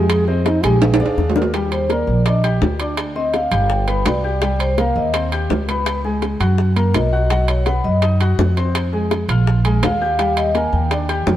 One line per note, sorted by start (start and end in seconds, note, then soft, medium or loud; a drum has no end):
0.00 0.58 F2 loud
0.00 0.21 G#3 medium
0.00 0.11 G4 loud
0.00 0.21 G#4 medium
0.00 0.21 G#5 medium
0.09 0.27 G#4 loud
0.09 high bongo medium
0.09 high timbale loud
0.28 0.57 C4 medium
0.28 0.44 C4 medium
0.28 0.57 C5 medium
0.28 0.58 D#5 medium
0.28 high bongo soft
0.46 0.65 D#4 medium
0.46 high bongo loud
0.46 high timbale medium
0.46 low timbale medium
0.63 0.97 A#1 loud
0.63 0.93 G#3 medium
0.63 0.83 G4 medium
0.63 0.93 G#4 medium
0.63 0.94 G#5 medium
0.63 high bongo medium
0.63 high timbale loud
0.82 1.45 G#4 medium
0.82 low bongo medium
0.82 high timbale loud
0.94 high timbale loud
0.99 1.16 D2 medium
0.99 1.29 D4 medium
0.99 1.29 D5 medium
0.99 1.30 F5 medium
0.99 low bongo medium
1.06 high timbale medium
1.17 2.02 D#2 loud
1.17 low bongo medium
1.30 low timbale medium
1.36 1.50 A#3 medium
1.36 1.50 A#4 medium
1.36 1.51 D5 medium
1.36 low bongo loud
1.42 low timbale medium
1.54 1.83 G3 medium
1.54 1.83 G4 medium
1.54 1.84 G5 medium
1.54 high bongo medium
1.54 high timbale medium
1.72 1.89 C5 medium
1.72 high bongo soft
1.72 high timbale medium
1.89 2.19 A#3 medium
1.89 2.19 A#4 medium
1.89 2.24 D5 medium
1.89 2.20 A#5 medium
1.89 high bongo medium
1.89 high timbale medium
1.89 low timbale medium
2.07 2.58 A#1 loud
2.07 high bongo soft
2.26 2.40 D4 medium
2.26 2.41 D5 medium
2.26 2.43 D#5 medium
2.26 2.41 D6 medium
2.26 high bongo medium
2.26 high timbale medium
2.44 2.73 G4 medium
2.44 2.73 G5 medium
2.44 2.74 G6 medium
2.44 high bongo soft
2.44 high timbale medium
2.61 3.46 D2 medium
2.61 high bongo medium
2.61 low bongo medium
2.61 low timbale medium
2.80 3.09 D4 medium
2.80 3.09 D5 medium
2.80 3.10 D6 medium
2.80 high timbale medium
2.97 high bongo medium
2.97 high timbale medium
3.15 3.45 C4 medium
3.15 3.45 C5 medium
3.15 3.33 D#5 medium
3.15 3.45 C6 medium
3.15 high bongo soft
3.34 3.67 F5 medium
3.34 high bongo medium
3.34 high timbale medium
3.34 low timbale medium
3.51 4.02 G1 loud
3.51 3.81 G4 medium
3.51 3.81 G5 medium
3.51 3.82 G6 medium
3.51 high timbale medium
3.70 3.81 G5 medium
3.70 high bongo medium
3.88 4.17 B3 medium
3.88 4.18 B4 medium
3.88 4.18 B5 medium
3.88 high bongo soft
3.88 high timbale medium
4.05 4.90 C2 medium
4.05 4.56 D5 medium
4.05 high bongo medium
4.05 low bongo medium
4.05 high timbale medium
4.05 low timbale medium
4.24 4.39 G4 medium
4.24 4.39 G5 medium
4.24 4.39 G6 medium
4.24 high bongo soft
4.42 4.71 G3 medium
4.42 4.72 G4 medium
4.42 4.72 G5 medium
4.42 high bongo medium
4.42 high timbale medium
4.59 4.77 C5 medium
4.59 high bongo soft
4.59 high timbale medium
4.78 5.08 A#3 medium
4.78 5.08 A#4 medium
4.78 4.96 F5 medium
4.78 5.08 A#5 medium
4.78 high bongo medium
4.78 high timbale medium
4.78 low timbale medium
4.96 5.46 D#2 loud
4.96 5.14 D#5 medium
4.96 high bongo soft
5.14 5.29 C4 medium
5.14 5.29 C5 medium
5.14 5.29 C6 medium
5.14 high bongo medium
5.14 high timbale loud
5.32 5.62 G4 medium
5.32 5.62 G5 medium
5.32 5.62 G6 medium
5.32 high bongo soft
5.32 high timbale medium
5.50 6.34 C#2 loud
5.50 high bongo medium
5.50 low bongo medium
5.50 low timbale medium
5.68 5.98 B3 medium
5.68 5.98 B4 medium
5.68 5.98 B5 medium
5.68 high timbale medium
5.86 high bongo medium
5.86 high timbale medium
6.04 6.34 G#3 medium
6.04 6.34 G#4 medium
6.04 6.34 G#5 medium
6.04 high bongo soft
6.22 high bongo medium
6.22 high timbale medium
6.22 low timbale soft
6.40 6.90 F#2 medium
6.40 6.70 F#4 medium
6.40 6.70 F#5 medium
6.40 6.70 F#6 medium
6.40 high timbale medium
6.58 high bongo medium
6.76 7.06 A#3 medium
6.76 7.06 A#4 medium
6.76 7.06 A#5 medium
6.76 high bongo soft
6.76 high timbale medium
6.94 7.78 B1 medium
6.94 7.45 D#5 medium
6.94 high bongo medium
6.94 low bongo medium
6.94 high timbale medium
6.94 low timbale medium
7.13 7.27 F#4 medium
7.13 7.27 F#5 medium
7.13 7.28 F#6 medium
7.13 high bongo soft
7.30 7.60 F#3 medium
7.30 7.60 F#4 medium
7.30 7.61 F#5 medium
7.30 high bongo medium
7.30 high timbale medium
7.48 7.66 C#5 medium
7.48 high bongo soft
7.48 high timbale medium
7.66 7.96 B3 medium
7.66 7.97 B4 medium
7.66 7.84 F#5 medium
7.66 7.97 B5 medium
7.66 high bongo medium
7.66 high timbale medium
7.66 low timbale medium
7.84 8.35 F#2 loud
7.84 8.02 D#5 medium
7.84 high bongo soft
8.02 8.17 D#4 medium
8.02 8.18 D#5 medium
8.02 8.18 D#6 medium
8.02 high bongo medium
8.02 high timbale medium
8.21 8.50 F#4 medium
8.21 8.50 F#5 medium
8.21 8.51 F#6 medium
8.21 high bongo soft
8.21 high timbale medium
8.38 9.23 F2 medium
8.38 high bongo medium
8.38 low bongo medium
8.38 low timbale medium
8.57 8.86 C4 medium
8.57 8.87 C5 medium
8.57 8.87 C6 medium
8.57 high timbale medium
8.75 high bongo medium
8.75 high timbale loud
8.93 9.22 G#3 medium
8.93 9.22 G#4 medium
8.93 9.23 G#5 medium
8.93 high bongo soft
9.11 high bongo medium
9.11 high timbale medium
9.11 low timbale soft
9.28 9.79 A#1 loud
9.28 9.58 F4 medium
9.28 9.59 F5 medium
9.28 9.59 F6 medium
9.28 high timbale medium
9.47 high bongo medium
9.65 9.94 G#3 medium
9.65 9.95 G#4 medium
9.65 9.95 G#5 medium
9.65 high bongo soft
9.65 high timbale medium
9.83 10.67 D#2 medium
9.83 10.33 F5 medium
9.83 high bongo medium
9.83 low bongo medium
9.83 high timbale loud
9.83 low timbale medium
10.01 10.16 G4 medium
10.01 10.16 G5 medium
10.01 10.16 G6 medium
10.01 high bongo soft
10.19 10.48 G3 medium
10.19 10.48 G4 medium
10.19 10.49 G5 medium
10.19 high bongo medium
10.19 high timbale medium
10.37 10.54 D#5 loud
10.37 high bongo soft
10.37 high timbale medium
10.54 10.84 A#3 medium
10.54 10.84 A#4 medium
10.54 10.73 G#5 medium
10.54 10.85 A#5 medium
10.54 high bongo medium
10.54 high timbale medium
10.54 low timbale medium
10.73 11.23 D#2 loud
10.73 10.90 G5 medium
10.73 high bongo soft
10.91 11.06 D4 medium
10.91 11.06 D5 medium
10.91 11.06 D6 medium
10.91 high bongo medium
10.91 high timbale medium
11.09 11.37 G4 medium
11.09 11.37 G5 medium
11.09 11.37 G6 medium
11.09 high bongo soft
11.09 high timbale medium
11.26 11.37 F2 medium
11.26 high bongo medium
11.26 low bongo medium
11.26 low timbale medium